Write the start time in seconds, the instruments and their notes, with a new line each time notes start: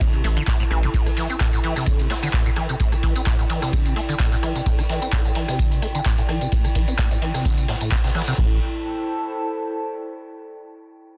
Already playing: ambient pad E4 A4 C5 A5
0.01 acid bass D3, kick, closed hi-hat, ride
0.13 acid bass C3, closed hi-hat
0.24 analog synth bass A1, acid bass A3, cross-stick, open hi-hat, ride
0.36 acid bass D3, closed hi-hat, ride
0.47 acid bass A2, kick, snare, clap, closed hi-hat, ride
0.59 acid bass A2, snare, closed hi-hat
0.70 analog synth bass A1, acid bass E3, cross-stick, open hi-hat, ride
0.83 acid bass C3, ambient pad G5, closed hi-hat, ride
0.94 acid bass A2, kick, closed hi-hat, ride, tambourine
1.06 acid bass G3, cross-stick, closed hi-hat, tambourine
1.16 acid bass E3, snare, open hi-hat, ride
1.30 acid bass C4, closed hi-hat, tambourine
1.40 acid bass A2, kick, cross-stick, snare, clap, closed hi-hat, ride, tambourine
1.53 acid bass A2, closed hi-hat, tambourine
1.63 acid bass E3, open hi-hat, ride
1.74 acid bass C3, ambient pad D5, cross-stick, snare, closed hi-hat, tambourine
1.86 acid bass D3, kick, closed hi-hat, ride, tambourine
1.99 acid bass C3, closed hi-hat, tambourine
2.10 acid bass A3, cross-stick, snare, open hi-hat, ride
2.22 acid bass D3, snare, closed hi-hat, ride, tambourine
2.33 acid bass A2, kick, snare, clap, closed hi-hat, ride, tambourine
2.46 acid bass A2, closed hi-hat, tambourine
2.56 acid bass E3, cross-stick, open hi-hat, ride
2.69 acid bass C3, closed hi-hat, tambourine
2.80 acid bass A2, kick, closed hi-hat, ride, tambourine
2.92 acid bass G3, cross-stick, closed hi-hat, tambourine
3.03 acid bass E3, kick, open hi-hat, ride
3.16 acid bass C4, closed hi-hat, tambourine
3.26 acid bass A2, kick, cross-stick, snare, clap, closed hi-hat, ride, tambourine
3.39 acid bass A2, closed hi-hat, tambourine
3.50 acid bass E3, open hi-hat, ride
3.62 acid bass C3, cross-stick, snare, closed hi-hat, tambourine
3.73 acid bass D3, kick, closed hi-hat, ride, tambourine
3.85 acid bass C3, closed hi-hat, tambourine
3.96 acid bass A3, cross-stick, open hi-hat, ride
4.09 acid bass D3, closed hi-hat, ride, tambourine
4.19 acid bass A2, kick, snare, clap, closed hi-hat, ride, tambourine
4.32 acid bass A2, snare, closed hi-hat, tambourine
4.43 acid bass E3, cross-stick, open hi-hat, ride
4.55 acid bass C3, closed hi-hat, ride, tambourine
4.66 acid bass A2, kick, closed hi-hat, ride, tambourine
4.78 acid bass G3, cross-stick, closed hi-hat, tambourine
4.89 acid bass E3, snare, open hi-hat, ride
5.02 acid bass C4, closed hi-hat, tambourine
5.12 acid bass A2, kick, cross-stick, snare, clap, closed hi-hat, ride, tambourine
5.25 acid bass A2, closed hi-hat, tambourine
5.35 acid bass E3, open hi-hat, ride
5.48 acid bass C3, cross-stick, snare, closed hi-hat, tambourine
5.59 acid bass D3, kick, closed hi-hat, ride, tambourine
5.72 acid bass C3, closed hi-hat, tambourine
5.82 acid bass A3, cross-stick, open hi-hat
5.95 acid bass D3, closed hi-hat, tambourine
6.05 acid bass A2, kick, snare, clap, closed hi-hat, ride, tambourine
6.18 acid bass A2, closed hi-hat, tambourine
6.29 acid bass E3, cross-stick, open hi-hat, ride
6.41 acid bass C3, closed hi-hat, tambourine
6.52 acid bass A2, kick, closed hi-hat, ride, tambourine
6.64 acid bass G3, cross-stick, closed hi-hat, tambourine
6.75 acid bass E3, kick, open hi-hat, ride
6.88 acid bass C4, closed hi-hat, tambourine
6.98 acid bass A2, kick, cross-stick, snare, clap, closed hi-hat, ride, tambourine
7.11 acid bass A2, closed hi-hat, tambourine
7.22 acid bass E3, open hi-hat, ride
7.34 acid bass C3, cross-stick, snare, closed hi-hat, tambourine
7.45 acid bass D3, kick, snare, closed hi-hat, ride, tambourine
7.58 acid bass C3, closed hi-hat, tambourine
7.68 acid bass A2, cross-stick, snare, open hi-hat, ride
7.81 acid bass A2, closed hi-hat, ride, tambourine
7.91 acid bass C3, kick, snare, clap, closed hi-hat, ride, tambourine
8.04 acid bass C3, snare, closed hi-hat, ride, tambourine
8.15 acid bass E3, cross-stick, snare, open hi-hat, ride
8.21 snare, ride
8.27 acid bass C3, snare, closed hi-hat, ride, tambourine
8.32 snare, ride
8.38 analog synth bass A1, acid bass A2, ambient pad E4, kick, crash
8.46 ambient pad A4
8.53 ambient pad C5
8.59 ambient pad A5